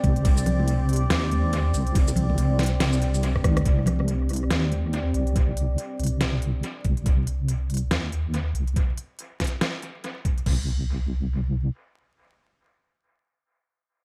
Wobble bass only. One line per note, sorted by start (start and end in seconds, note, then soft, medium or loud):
0.04 0.24 C2 loud
0.25 1.09 C2 loud
1.10 1.73 D#2 loud
1.74 2.36 C2 loud
2.38 2.79 C2 medium
2.80 3.43 C2 loud
3.44 3.64 D#2 loud
3.66 4.49 C2 medium
4.51 5.13 D#2 loud
5.14 5.77 C2 loud
6.00 6.62 C2 medium
6.85 7.04 C2 medium
7.06 7.90 C2 medium
7.91 8.53 D#2 medium
8.55 8.75 C2 medium
10.46 11.70 C2 medium